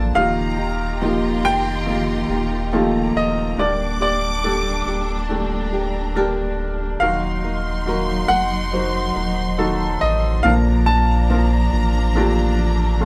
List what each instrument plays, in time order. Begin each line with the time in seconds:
Already playing: sub bass A1, nylon-string guitar D3 F3 A#3 D4 A4, string section F3 D4, felt piano A3 A#3 D4 F4 A4 D5 F5, violin section A5
0.15 sub bass D#1, nylon-string guitar D#3 F3 A#3 D#4 G4, felt piano D#3 A#3 D#4 F4 G4 D#5, string section D#3 D#4 F4 G4 A#5, grand piano F5, violin section A#5
0.58 nylon-string guitar A#3 D#4 G4
1.01 nylon-string guitar D#3 F3 A#3 D#4 G4, felt piano A#3 D#4 F4 G4 D#5, violin section C6
1.43 sub bass F1, nylon-string guitar A#3 D#4 G4, grand piano G5
1.86 nylon-string guitar F3 A#3 D#4 G4, felt piano A#3 D#4 F4 G4 D#5
2.29 sub bass D#1, nylon-string guitar A#3 D#4 G4
2.72 nylon-string guitar D#3 F3 A#3 D#4 G4, felt piano A3 A#3 D#4 F4 G4, violin section A#5
3.15 sub bass D#1, grand piano D#5
3.57 sub bass D1, string section A#2 G3 D4, nylon-string guitar D3 G3 A#3 D4 G4, felt piano D3 D4 G4 A#4, grand piano D5, violin section D6
4.00 nylon-string guitar A#3 D4 G4, grand piano D5
4.44 nylon-string guitar D3 G3 A#3 D4 G4, felt piano D4 G4 A4
4.87 sub bass D1, nylon-string guitar A#3 D4 G4
5.23 violin section A5
5.29 nylon-string guitar G3 A#3 D4 G4, felt piano A3 D4 G4, violin section A#5
5.73 nylon-string guitar A#3 D4 G4
6.15 nylon-string guitar D3 G3 A#3 D4 G4, felt piano D4 G4 A#4
7.00 sub bass D#1, nylon-string guitar D#3 F#3 A#3 D#4 A#4, felt piano D#3 D#4 F#4 A#4, string section F#3 D#4, grand piano F5, violin section C6
7.44 nylon-string guitar A#3 D#4 A#4
7.86 nylon-string guitar D#3 F#3 A#3 D#4 A#4, felt piano D#4 F#4 A#4
8.28 sub bass F1, nylon-string guitar A#3 D#4 A#4, grand piano F#5
8.72 nylon-string guitar F#3 A#3 D#4 A#4, felt piano D#4 F#4 C5
9.16 sub bass D#1, nylon-string guitar A#3 D#4 A#4
9.58 nylon-string guitar D#3 F#3 A#3 D#4 A#4, felt piano D#4 F#4 A4
10.01 sub bass A1, grand piano D#5
10.43 sub bass A#1, nylon-string guitar A#2 D3 F3 A#3 D4, felt piano A#2 F3 A#3 D4 F4 A#4, string section F3 D4, grand piano F5, violin section A#5
10.86 nylon-string guitar F3 A#3 D4, grand piano A5
11.30 nylon-string guitar A#2 D3 F3 A#3 D4, felt piano F3 A#3 D4 F4 A#4
11.73 sub bass A1, nylon-string guitar F3 A#3 D4
12.15 nylon-string guitar F3 A#3 D4, felt piano A3 A#3 D4 F4 G4
12.59 nylon-string guitar F3 A#3 D4
13.01 felt piano A3 A#3 C#4 F4